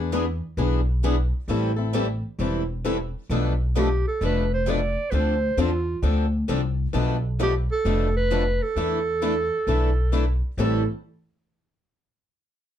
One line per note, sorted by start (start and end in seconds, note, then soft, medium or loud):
0.00 0.39 E2 medium
0.00 0.12 B3 soft
0.00 0.12 D4 medium
0.00 0.12 G#4 soft
0.12 0.24 E3 medium
0.12 0.24 B3 loud
0.12 0.24 D4 medium
0.12 0.24 G#4 medium
0.12 0.24 B4 medium
0.57 1.30 B1 medium
0.57 0.80 E3 medium
0.57 0.80 B3 medium
0.57 0.80 D4 medium
0.57 0.80 G#4 medium
0.57 0.80 B4 medium
1.03 1.15 E3 medium
1.03 1.15 B3 medium
1.03 1.15 D4 medium
1.03 1.15 G#4 medium
1.03 1.15 B4 medium
1.48 2.21 A1 medium
1.48 1.70 E3 medium
1.48 1.70 G3 medium
1.48 1.71 C4 medium
1.48 1.71 E4 medium
1.48 1.71 A4 medium
1.76 1.93 C4 soft
1.76 1.94 E4 soft
1.76 1.93 A4 soft
1.93 2.05 E3 medium
1.93 2.05 G3 medium
1.93 2.05 C4 medium
1.93 2.05 E4 medium
1.93 2.06 A4 medium
2.39 3.12 E1 medium
2.39 2.61 E3 medium
2.39 2.61 G3 medium
2.39 2.61 C4 medium
2.39 2.61 E4 soft
2.39 2.62 A4 medium
2.85 2.96 E3 medium
2.85 2.96 G3 medium
2.85 2.97 C4 medium
2.85 2.97 E4 medium
2.85 2.97 A4 medium
3.30 4.03 B1 medium
3.30 3.52 B2 medium
3.30 3.52 F3 medium
3.30 3.52 A3 medium
3.30 3.52 D4 medium
3.30 3.52 A4 medium
3.30 3.52 B4 medium
3.75 3.87 B2 medium
3.75 3.87 F3 medium
3.75 3.87 A3 medium
3.75 3.87 D4 medium
3.75 4.04 G4 medium
3.75 3.87 A4 medium
3.75 3.88 B4 loud
4.07 4.21 A4 medium
4.21 4.94 F1 medium
4.21 4.43 B2 medium
4.21 4.43 F3 soft
4.21 4.43 A3 medium
4.21 4.43 D4 medium
4.21 4.43 A4 medium
4.21 4.43 B4 medium
4.21 4.50 B4 medium
4.54 4.72 C5 medium
4.66 4.78 B2 medium
4.66 4.78 F3 medium
4.66 4.78 A3 medium
4.66 4.78 D4 medium
4.66 4.78 A4 medium
4.66 4.78 B4 medium
4.70 5.12 D5 medium
5.11 5.48 D2 medium
5.11 5.33 D3 medium
5.11 5.34 F3 medium
5.11 5.34 C4 medium
5.11 5.34 D4 medium
5.11 5.34 A4 medium
5.11 5.16 B4 medium
5.15 5.59 C5 medium
5.57 5.96 E2 medium
5.57 5.69 D3 medium
5.57 5.69 F3 medium
5.57 5.69 C4 medium
5.57 5.70 D4 medium
5.57 6.01 F4 medium
5.57 5.70 A4 medium
6.02 6.41 D2 medium
6.02 6.25 D3 medium
6.02 6.25 F3 medium
6.02 6.25 C4 medium
6.02 6.25 D4 medium
6.02 6.25 A4 medium
6.48 6.87 C2 medium
6.48 6.60 D3 medium
6.48 6.60 F3 medium
6.48 6.60 C4 medium
6.48 6.60 D4 medium
6.48 6.61 A4 medium
6.94 7.67 B1 medium
6.94 7.16 B2 medium
6.94 7.16 F3 medium
6.94 7.16 A3 medium
6.94 7.16 D4 medium
6.94 7.16 A4 medium
6.94 7.16 B4 medium
7.40 7.51 B2 loud
7.40 7.51 F3 medium
7.40 7.51 A3 medium
7.40 7.51 D4 medium
7.40 7.55 G4 medium
7.40 7.52 A4 medium
7.40 7.52 B4 medium
7.72 8.12 A4 medium
7.85 8.58 F1 medium
7.85 8.07 B2 medium
7.85 8.07 F3 soft
7.85 8.07 A3 medium
7.85 8.07 D4 medium
7.85 8.07 A4 medium
7.85 8.07 B4 medium
8.17 8.64 B4 loud
8.31 8.42 B2 medium
8.31 8.42 F3 medium
8.31 8.42 A3 medium
8.31 8.42 D4 medium
8.31 8.43 A4 medium
8.31 8.43 B4 medium
8.63 10.43 A4 medium
8.76 9.49 E2 medium
8.76 8.98 E3 medium
8.76 8.98 A3 medium
8.76 8.98 D4 medium
8.76 8.99 E4 medium
8.76 8.99 A4 medium
9.22 9.33 E3 medium
9.22 9.33 A3 medium
9.22 9.33 D4 medium
9.22 9.34 E4 medium
9.22 9.34 A4 medium
9.67 10.40 B1 medium
9.67 9.89 E3 medium
9.67 9.89 A3 medium
9.67 9.89 D4 medium
9.67 9.90 E4 medium
9.67 9.90 A4 medium
10.13 10.24 E3 medium
10.13 10.24 A3 medium
10.13 10.24 D4 medium
10.13 10.25 E4 medium
10.13 10.25 A4 medium
10.57 10.85 A1 medium
10.57 10.81 A2 medium
10.57 10.82 E3 medium
10.57 10.82 G3 medium
10.57 10.82 C4 medium
10.57 10.82 E4 medium
10.57 10.82 A4 medium
10.57 10.86 A4 medium